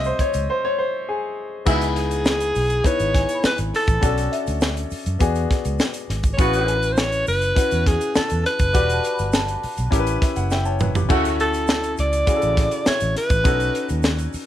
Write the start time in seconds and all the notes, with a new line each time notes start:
Already playing: C2 F#3 A3 C4 C5 D#5 E5
0.04 C5, shaker
0.19 C#5, muted fingered electric bass stroke, kick, closed hi-hat
0.34 C#2, closed hi-hat, shaker
0.50 C5
0.65 C#5
0.78 C5
1.09 G#4
1.65 C#2 B2 G#3 B3 D#4 E4 G#4 F#5, kick, crash, shaker
1.81 closed hi-hat, shaker
1.86 B5
1.96 G#4, closed hi-hat
2.11 closed hi-hat, shaker
2.25 snare, shaker
2.40 closed hi-hat, shaker
2.55 B1, open hi-hat, shaker
2.70 closed hi-hat, shaker
2.83 B3 D#4 E4 B4 C#5, kick, closed hi-hat, shaker
3.00 G#1, closed hi-hat, shaker
3.14 G#5, kick, snare, closed hi-hat
3.29 closed hi-hat, shaker
3.34 B5
3.44 B4, muted fingered electric bass stroke, snare, shaker
3.58 G#1, closed hi-hat, shaker
3.74 A4, snare, open hi-hat
3.87 A1, kick, closed hi-hat, shaker
4.01 B1 C#4 D4 F#4 A4, kick, closed hi-hat, shaker
4.18 closed hi-hat, shaker
4.32 E5, closed hi-hat
4.47 D2, closed hi-hat, shaker
4.61 snare, shaker
4.77 closed hi-hat, shaker
4.91 muted fingered electric bass stroke, open hi-hat, shaker
5.06 F#2, closed hi-hat, shaker
5.19 E2 B3 D4 F#4 G#4, kick, closed hi-hat, shaker
5.35 closed hi-hat, shaker
5.51 kick, snare, closed hi-hat
5.65 C#2, closed hi-hat, shaker
5.79 snare, shaker
5.93 closed hi-hat, shaker
6.09 G#1, snare, closed hi-hat
6.23 kick, closed hi-hat, shaker
6.33 C#5
6.37 A1 C#3 B3 C#4 E4 F#4 B4, kick, closed hi-hat, shaker
6.53 closed hi-hat, shaker
6.68 closed hi-hat
6.83 closed hi-hat, shaker
6.92 C5
6.97 C#5, snare, shaker
7.12 closed hi-hat, shaker
7.27 F#1 B4, open hi-hat, shaker
7.42 closed hi-hat, shaker
7.56 C#4 E4 F#4 B4, muted fingered electric bass stroke, kick, closed hi-hat, shaker
7.71 E2, closed hi-hat, shaker
7.87 G#4, kick, snare, closed hi-hat
8.01 closed hi-hat, shaker
8.15 A4 A5, muted fingered electric bass stroke, snare, shaker
8.30 E2, closed hi-hat, shaker
8.45 B4, snare, closed hi-hat
8.59 F#1, kick, closed hi-hat, shaker
8.73 E1 D4 F#4 G4 B4 F#5, kick, closed hi-hat, shaker
8.89 A5, closed hi-hat, shaker
9.04 closed hi-hat, shaker
9.13 B5
9.18 G1, closed hi-hat, shaker
9.33 A5, snare, shaker
9.48 closed hi-hat, shaker
9.63 muted fingered electric bass stroke, open hi-hat
9.77 B1, closed hi-hat, shaker
9.91 A1 C#4 E4 G4 A#4, kick, closed hi-hat, shaker
9.99 B4
10.07 closed hi-hat, shaker
10.22 E5, kick, snare, closed hi-hat, shaker
10.36 F#1 F#5, closed hi-hat, shaker
10.51 E5 G5, snare, shaker
10.65 C#5 A5, shaker
10.80 B4, mid tom, shaker
10.95 G4, floor tom, shaker
11.09 D2 C#3 A3 C#4 E4 F#4 A4, kick, crash, shaker
11.25 closed hi-hat, shaker
11.40 A4, closed hi-hat
11.53 closed hi-hat, shaker
11.67 snare, shaker
11.83 closed hi-hat, shaker
11.97 C#2 D5, closed hi-hat, shaker
12.13 closed hi-hat, shaker
12.26 C#3 E4 F#4 G#4, kick, closed hi-hat, shaker
12.35 A4
12.42 A1, closed hi-hat, shaker
12.57 kick, snare, closed hi-hat
12.71 closed hi-hat, shaker
12.86 C#5 E5, muted fingered electric bass stroke, snare, shaker
13.00 A1, closed hi-hat, shaker
13.16 B4, snare, closed hi-hat
13.30 A1, kick, closed hi-hat, shaker
13.44 B1 C#4 D#4 F#4 A4, kick, closed hi-hat, shaker
13.60 closed hi-hat, shaker
13.75 closed hi-hat
13.89 D#2, closed hi-hat, shaker
14.03 snare, shaker
14.19 closed hi-hat, shaker
14.33 muted fingered electric bass stroke, open hi-hat, shaker